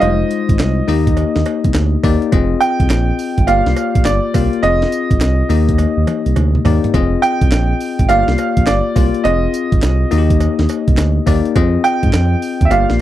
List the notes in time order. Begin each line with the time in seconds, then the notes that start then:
0.00 F1 G3 D#4 F4 C5 D#5, closed hi-hat, cowbell
0.08 G#3
0.31 closed hi-hat
0.49 G#1, kick, closed hi-hat
0.59 C2, snare, clap, closed hi-hat, cowbell
0.88 D#2 A#3 D#4 G4 D#5, open hi-hat
1.07 kick, closed hi-hat
1.17 closed hi-hat, cowbell
1.36 D#2, snare
1.46 closed hi-hat, cowbell
1.64 C2, kick, closed hi-hat
1.74 D2, snare, clap, closed hi-hat, cowbell
2.03 D#2 A#3 D#4 G4 D5, kick, open hi-hat, cowbell
2.22 closed hi-hat
2.32 F1 C4 F4 G#4 D#5, kick, closed hi-hat, cowbell
2.61 G5, closed hi-hat, tambourine
2.80 C2, kick, closed hi-hat
2.90 A#1, snare, clap, closed hi-hat, tambourine, cowbell
3.19 open hi-hat, tambourine
3.38 G#1, kick, closed hi-hat
3.47 G1 A#3 F4 G4 D5 F5, closed hi-hat, tambourine, cowbell
3.66 C2, snare
3.76 closed hi-hat, tambourine, cowbell
3.95 A#1, kick, closed hi-hat
4.05 G1 D5, snare, clap, closed hi-hat, tambourine, cowbell
4.34 C2 A#3 F4 G4 F5, kick, open hi-hat, tambourine, cowbell
4.53 closed hi-hat
4.63 F1 C4 F4 G#4 D#5, closed hi-hat, cowbell
4.82 snare
4.92 closed hi-hat, tambourine
5.11 G#1, kick, closed hi-hat
5.21 C2, snare, clap, closed hi-hat, tambourine, cowbell
5.49 D#2 A#3 D#4 G4 D#5, open hi-hat, tambourine
5.69 kick, closed hi-hat
5.78 closed hi-hat, high tom, cowbell
5.97 D#2
6.07 closed hi-hat, mid tom, cowbell
6.26 C2, closed hi-hat
6.36 D2, closed hi-hat, mid tom, cowbell
6.55 mid tom
6.65 D#2 A#3 D#4 G4 D5, floor tom, open hi-hat, cowbell
6.84 closed hi-hat, floor tom
6.94 F1 C4 F4 G#4 D#5, kick, closed hi-hat, cowbell
7.22 G5, closed hi-hat, tambourine
7.41 C2, kick, closed hi-hat
7.52 A#1, snare, clap, closed hi-hat, tambourine, cowbell
7.80 open hi-hat, tambourine
7.99 G#1, kick, closed hi-hat
8.09 G1 A#3 F4 G4 D5 F5, closed hi-hat, tambourine, cowbell
8.28 C2, snare
8.38 closed hi-hat, tambourine, cowbell
8.57 A#1, kick, closed hi-hat
8.66 G1 D5, snare, clap, closed hi-hat, tambourine, cowbell
8.96 C2 A#3 F4 G4 D5, kick, open hi-hat, tambourine, cowbell
9.14 closed hi-hat
9.24 F1 C4 F4 G#4 D#5, closed hi-hat, cowbell
9.54 closed hi-hat, tambourine
9.72 G#1, kick, closed hi-hat
9.82 C2, snare, clap, closed hi-hat, tambourine, cowbell
10.11 D#2 A#3 D#4 F#4 D#5, open hi-hat, tambourine
10.18 G4
10.30 kick, closed hi-hat
10.40 closed hi-hat, tambourine, cowbell
10.59 D#2, snare
10.69 closed hi-hat, tambourine, cowbell
10.88 C2, kick, closed hi-hat
10.97 D2, snare, clap, closed hi-hat, tambourine, cowbell
11.26 D#2 A#3 D#4 G4 D5, kick, open hi-hat, tambourine, cowbell
11.45 closed hi-hat
11.55 F2 C4 F4 G#4 D#5, kick, closed hi-hat, cowbell
11.84 G5, closed hi-hat, tambourine
12.03 G#2, kick, closed hi-hat
12.13 F2, snare, clap, closed hi-hat, tambourine, cowbell
12.42 open hi-hat, tambourine
12.61 D#2, kick, closed hi-hat
12.65 E5
12.70 G1 A#3 F4 G4 D5 F5, closed hi-hat, tambourine, cowbell
12.90 A#1, snare